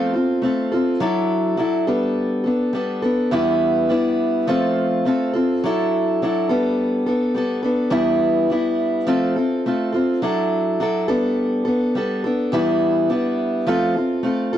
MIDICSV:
0, 0, Header, 1, 2, 480
1, 0, Start_track
1, 0, Key_signature, 1, "major"
1, 0, Tempo, 575264
1, 1814, Time_signature, 4, 2, 24, 8
1, 12163, End_track
2, 0, Start_track
2, 0, Title_t, "Steel-string acoustic guitar"
2, 0, Program_c, 0, 25
2, 0, Note_on_c, 0, 53, 69
2, 0, Note_on_c, 0, 57, 72
2, 0, Note_on_c, 0, 60, 82
2, 0, Note_on_c, 0, 65, 87
2, 0, Note_on_c, 0, 69, 89
2, 102, Note_off_c, 0, 69, 0
2, 112, Note_on_c, 0, 69, 43
2, 118, Note_off_c, 0, 65, 0
2, 122, Note_off_c, 0, 53, 0
2, 124, Note_off_c, 0, 60, 0
2, 125, Note_off_c, 0, 57, 0
2, 128, Note_on_c, 0, 65, 39
2, 137, Note_on_c, 0, 60, 36
2, 348, Note_on_c, 0, 57, 54
2, 350, Note_off_c, 0, 60, 0
2, 357, Note_off_c, 0, 65, 0
2, 360, Note_on_c, 0, 60, 56
2, 361, Note_off_c, 0, 69, 0
2, 367, Note_on_c, 0, 65, 51
2, 375, Note_on_c, 0, 69, 61
2, 589, Note_off_c, 0, 69, 0
2, 599, Note_off_c, 0, 57, 0
2, 599, Note_off_c, 0, 65, 0
2, 599, Note_on_c, 0, 69, 58
2, 605, Note_off_c, 0, 60, 0
2, 609, Note_on_c, 0, 65, 47
2, 622, Note_on_c, 0, 60, 39
2, 837, Note_on_c, 0, 54, 84
2, 842, Note_off_c, 0, 60, 0
2, 844, Note_off_c, 0, 65, 0
2, 845, Note_off_c, 0, 69, 0
2, 846, Note_on_c, 0, 62, 68
2, 848, Note_on_c, 0, 64, 74
2, 855, Note_on_c, 0, 69, 83
2, 1302, Note_off_c, 0, 54, 0
2, 1309, Note_off_c, 0, 62, 0
2, 1312, Note_on_c, 0, 54, 63
2, 1319, Note_off_c, 0, 64, 0
2, 1319, Note_on_c, 0, 62, 54
2, 1326, Note_off_c, 0, 69, 0
2, 1329, Note_on_c, 0, 64, 63
2, 1336, Note_on_c, 0, 69, 60
2, 1551, Note_off_c, 0, 69, 0
2, 1560, Note_off_c, 0, 62, 0
2, 1561, Note_on_c, 0, 69, 55
2, 1562, Note_off_c, 0, 64, 0
2, 1563, Note_off_c, 0, 54, 0
2, 1566, Note_on_c, 0, 59, 56
2, 1570, Note_on_c, 0, 62, 50
2, 1573, Note_on_c, 0, 55, 44
2, 2024, Note_off_c, 0, 69, 0
2, 2034, Note_on_c, 0, 69, 38
2, 2041, Note_off_c, 0, 59, 0
2, 2051, Note_on_c, 0, 59, 38
2, 2053, Note_off_c, 0, 62, 0
2, 2055, Note_off_c, 0, 55, 0
2, 2062, Note_on_c, 0, 62, 37
2, 2277, Note_on_c, 0, 55, 55
2, 2279, Note_off_c, 0, 62, 0
2, 2283, Note_off_c, 0, 59, 0
2, 2285, Note_off_c, 0, 69, 0
2, 2289, Note_on_c, 0, 62, 58
2, 2293, Note_on_c, 0, 59, 60
2, 2305, Note_on_c, 0, 69, 61
2, 2512, Note_off_c, 0, 69, 0
2, 2522, Note_on_c, 0, 69, 55
2, 2527, Note_off_c, 0, 55, 0
2, 2528, Note_off_c, 0, 59, 0
2, 2533, Note_off_c, 0, 62, 0
2, 2538, Note_on_c, 0, 59, 52
2, 2546, Note_on_c, 0, 62, 40
2, 2763, Note_on_c, 0, 40, 74
2, 2766, Note_off_c, 0, 62, 0
2, 2766, Note_on_c, 0, 52, 74
2, 2768, Note_off_c, 0, 59, 0
2, 2770, Note_off_c, 0, 69, 0
2, 2771, Note_on_c, 0, 55, 69
2, 2776, Note_on_c, 0, 62, 74
2, 2778, Note_on_c, 0, 59, 85
2, 2779, Note_on_c, 0, 64, 81
2, 3235, Note_off_c, 0, 55, 0
2, 3242, Note_off_c, 0, 62, 0
2, 3245, Note_on_c, 0, 55, 52
2, 3251, Note_off_c, 0, 40, 0
2, 3252, Note_on_c, 0, 62, 63
2, 3253, Note_off_c, 0, 52, 0
2, 3253, Note_off_c, 0, 59, 0
2, 3257, Note_off_c, 0, 64, 0
2, 3263, Note_on_c, 0, 59, 59
2, 3267, Note_on_c, 0, 64, 69
2, 3731, Note_on_c, 0, 53, 70
2, 3732, Note_off_c, 0, 55, 0
2, 3735, Note_on_c, 0, 57, 87
2, 3736, Note_off_c, 0, 62, 0
2, 3742, Note_off_c, 0, 59, 0
2, 3742, Note_on_c, 0, 60, 82
2, 3744, Note_off_c, 0, 64, 0
2, 3748, Note_on_c, 0, 65, 84
2, 3748, Note_on_c, 0, 69, 80
2, 4205, Note_off_c, 0, 57, 0
2, 4213, Note_off_c, 0, 60, 0
2, 4215, Note_on_c, 0, 57, 47
2, 4216, Note_off_c, 0, 53, 0
2, 4220, Note_off_c, 0, 65, 0
2, 4223, Note_on_c, 0, 60, 57
2, 4224, Note_off_c, 0, 69, 0
2, 4230, Note_on_c, 0, 65, 61
2, 4237, Note_on_c, 0, 69, 64
2, 4441, Note_off_c, 0, 69, 0
2, 4451, Note_on_c, 0, 69, 51
2, 4454, Note_off_c, 0, 65, 0
2, 4458, Note_off_c, 0, 57, 0
2, 4462, Note_off_c, 0, 60, 0
2, 4464, Note_on_c, 0, 65, 46
2, 4475, Note_on_c, 0, 60, 45
2, 4696, Note_off_c, 0, 69, 0
2, 4702, Note_off_c, 0, 65, 0
2, 4702, Note_on_c, 0, 54, 81
2, 4708, Note_off_c, 0, 60, 0
2, 4717, Note_on_c, 0, 64, 80
2, 4718, Note_on_c, 0, 62, 76
2, 4725, Note_on_c, 0, 69, 89
2, 5182, Note_off_c, 0, 54, 0
2, 5188, Note_off_c, 0, 62, 0
2, 5189, Note_off_c, 0, 64, 0
2, 5191, Note_on_c, 0, 54, 56
2, 5193, Note_off_c, 0, 69, 0
2, 5198, Note_on_c, 0, 62, 54
2, 5209, Note_on_c, 0, 64, 63
2, 5213, Note_on_c, 0, 69, 66
2, 5407, Note_off_c, 0, 69, 0
2, 5418, Note_on_c, 0, 69, 61
2, 5421, Note_off_c, 0, 62, 0
2, 5423, Note_off_c, 0, 64, 0
2, 5426, Note_off_c, 0, 54, 0
2, 5427, Note_on_c, 0, 59, 57
2, 5431, Note_on_c, 0, 62, 47
2, 5436, Note_on_c, 0, 55, 49
2, 5884, Note_off_c, 0, 69, 0
2, 5894, Note_off_c, 0, 59, 0
2, 5894, Note_on_c, 0, 69, 43
2, 5903, Note_off_c, 0, 62, 0
2, 5904, Note_on_c, 0, 59, 39
2, 5909, Note_off_c, 0, 55, 0
2, 5913, Note_on_c, 0, 62, 34
2, 6128, Note_off_c, 0, 62, 0
2, 6128, Note_on_c, 0, 55, 50
2, 6136, Note_off_c, 0, 59, 0
2, 6138, Note_off_c, 0, 69, 0
2, 6138, Note_on_c, 0, 62, 58
2, 6146, Note_on_c, 0, 59, 58
2, 6155, Note_on_c, 0, 69, 68
2, 6353, Note_off_c, 0, 69, 0
2, 6363, Note_on_c, 0, 69, 46
2, 6368, Note_off_c, 0, 59, 0
2, 6374, Note_off_c, 0, 55, 0
2, 6378, Note_on_c, 0, 59, 45
2, 6379, Note_off_c, 0, 62, 0
2, 6388, Note_on_c, 0, 62, 43
2, 6593, Note_off_c, 0, 62, 0
2, 6593, Note_on_c, 0, 40, 75
2, 6597, Note_off_c, 0, 59, 0
2, 6597, Note_on_c, 0, 52, 68
2, 6598, Note_on_c, 0, 55, 81
2, 6603, Note_on_c, 0, 62, 76
2, 6605, Note_off_c, 0, 69, 0
2, 6607, Note_on_c, 0, 59, 72
2, 6609, Note_on_c, 0, 64, 82
2, 7080, Note_off_c, 0, 55, 0
2, 7087, Note_off_c, 0, 40, 0
2, 7088, Note_off_c, 0, 52, 0
2, 7090, Note_on_c, 0, 55, 59
2, 7091, Note_off_c, 0, 62, 0
2, 7093, Note_off_c, 0, 59, 0
2, 7094, Note_off_c, 0, 64, 0
2, 7102, Note_on_c, 0, 62, 58
2, 7106, Note_on_c, 0, 59, 59
2, 7111, Note_on_c, 0, 64, 62
2, 7564, Note_on_c, 0, 53, 67
2, 7565, Note_off_c, 0, 55, 0
2, 7568, Note_on_c, 0, 57, 78
2, 7569, Note_off_c, 0, 62, 0
2, 7572, Note_on_c, 0, 60, 81
2, 7577, Note_off_c, 0, 59, 0
2, 7577, Note_off_c, 0, 64, 0
2, 7580, Note_on_c, 0, 65, 69
2, 7580, Note_on_c, 0, 69, 85
2, 7799, Note_off_c, 0, 69, 0
2, 7809, Note_on_c, 0, 69, 45
2, 7811, Note_off_c, 0, 53, 0
2, 7812, Note_off_c, 0, 65, 0
2, 7814, Note_off_c, 0, 57, 0
2, 7815, Note_off_c, 0, 60, 0
2, 7822, Note_on_c, 0, 65, 39
2, 7831, Note_on_c, 0, 60, 42
2, 8054, Note_off_c, 0, 69, 0
2, 8055, Note_off_c, 0, 60, 0
2, 8059, Note_on_c, 0, 57, 53
2, 8060, Note_off_c, 0, 65, 0
2, 8065, Note_on_c, 0, 60, 53
2, 8071, Note_on_c, 0, 65, 53
2, 8079, Note_on_c, 0, 69, 67
2, 8271, Note_off_c, 0, 69, 0
2, 8281, Note_on_c, 0, 69, 48
2, 8284, Note_off_c, 0, 65, 0
2, 8294, Note_on_c, 0, 65, 49
2, 8298, Note_off_c, 0, 57, 0
2, 8299, Note_off_c, 0, 60, 0
2, 8309, Note_on_c, 0, 60, 40
2, 8527, Note_on_c, 0, 54, 71
2, 8529, Note_off_c, 0, 69, 0
2, 8532, Note_off_c, 0, 60, 0
2, 8535, Note_off_c, 0, 65, 0
2, 8535, Note_on_c, 0, 62, 73
2, 8538, Note_on_c, 0, 64, 72
2, 8546, Note_on_c, 0, 69, 78
2, 9002, Note_off_c, 0, 54, 0
2, 9008, Note_off_c, 0, 62, 0
2, 9012, Note_on_c, 0, 54, 61
2, 9014, Note_off_c, 0, 64, 0
2, 9018, Note_on_c, 0, 62, 66
2, 9020, Note_off_c, 0, 69, 0
2, 9024, Note_on_c, 0, 64, 61
2, 9033, Note_on_c, 0, 69, 71
2, 9236, Note_off_c, 0, 69, 0
2, 9245, Note_off_c, 0, 62, 0
2, 9246, Note_on_c, 0, 69, 68
2, 9253, Note_off_c, 0, 54, 0
2, 9253, Note_off_c, 0, 64, 0
2, 9255, Note_on_c, 0, 62, 53
2, 9256, Note_on_c, 0, 59, 59
2, 9263, Note_on_c, 0, 55, 49
2, 9709, Note_off_c, 0, 69, 0
2, 9719, Note_on_c, 0, 69, 47
2, 9731, Note_off_c, 0, 59, 0
2, 9733, Note_off_c, 0, 62, 0
2, 9737, Note_off_c, 0, 55, 0
2, 9741, Note_on_c, 0, 59, 41
2, 9745, Note_on_c, 0, 62, 31
2, 9965, Note_off_c, 0, 69, 0
2, 9971, Note_off_c, 0, 62, 0
2, 9971, Note_on_c, 0, 55, 61
2, 9976, Note_off_c, 0, 59, 0
2, 9981, Note_on_c, 0, 62, 56
2, 9990, Note_on_c, 0, 59, 51
2, 9995, Note_on_c, 0, 69, 64
2, 10203, Note_off_c, 0, 69, 0
2, 10211, Note_off_c, 0, 55, 0
2, 10213, Note_on_c, 0, 69, 53
2, 10215, Note_off_c, 0, 59, 0
2, 10216, Note_off_c, 0, 62, 0
2, 10225, Note_on_c, 0, 59, 47
2, 10234, Note_on_c, 0, 62, 48
2, 10446, Note_on_c, 0, 40, 76
2, 10450, Note_off_c, 0, 59, 0
2, 10451, Note_off_c, 0, 62, 0
2, 10451, Note_off_c, 0, 69, 0
2, 10453, Note_on_c, 0, 52, 72
2, 10454, Note_on_c, 0, 55, 79
2, 10460, Note_on_c, 0, 59, 78
2, 10461, Note_on_c, 0, 62, 76
2, 10463, Note_on_c, 0, 64, 79
2, 10916, Note_off_c, 0, 55, 0
2, 10922, Note_off_c, 0, 62, 0
2, 10926, Note_off_c, 0, 40, 0
2, 10926, Note_on_c, 0, 55, 58
2, 10928, Note_off_c, 0, 59, 0
2, 10929, Note_off_c, 0, 52, 0
2, 10932, Note_on_c, 0, 62, 64
2, 10934, Note_off_c, 0, 64, 0
2, 10938, Note_on_c, 0, 59, 66
2, 10950, Note_on_c, 0, 64, 65
2, 11402, Note_on_c, 0, 53, 76
2, 11403, Note_off_c, 0, 55, 0
2, 11406, Note_on_c, 0, 57, 80
2, 11407, Note_off_c, 0, 62, 0
2, 11410, Note_off_c, 0, 59, 0
2, 11413, Note_on_c, 0, 60, 78
2, 11416, Note_off_c, 0, 64, 0
2, 11416, Note_on_c, 0, 65, 87
2, 11423, Note_on_c, 0, 69, 84
2, 11637, Note_off_c, 0, 69, 0
2, 11643, Note_off_c, 0, 53, 0
2, 11645, Note_off_c, 0, 57, 0
2, 11647, Note_on_c, 0, 69, 40
2, 11648, Note_off_c, 0, 60, 0
2, 11649, Note_off_c, 0, 65, 0
2, 11659, Note_on_c, 0, 65, 38
2, 11671, Note_on_c, 0, 60, 39
2, 11871, Note_off_c, 0, 60, 0
2, 11872, Note_on_c, 0, 57, 58
2, 11876, Note_off_c, 0, 65, 0
2, 11881, Note_on_c, 0, 60, 52
2, 11884, Note_off_c, 0, 69, 0
2, 11886, Note_on_c, 0, 65, 52
2, 11899, Note_on_c, 0, 69, 61
2, 12113, Note_off_c, 0, 69, 0
2, 12116, Note_off_c, 0, 57, 0
2, 12121, Note_off_c, 0, 60, 0
2, 12123, Note_off_c, 0, 65, 0
2, 12123, Note_on_c, 0, 69, 63
2, 12132, Note_on_c, 0, 65, 58
2, 12163, Note_off_c, 0, 65, 0
2, 12163, Note_off_c, 0, 69, 0
2, 12163, End_track
0, 0, End_of_file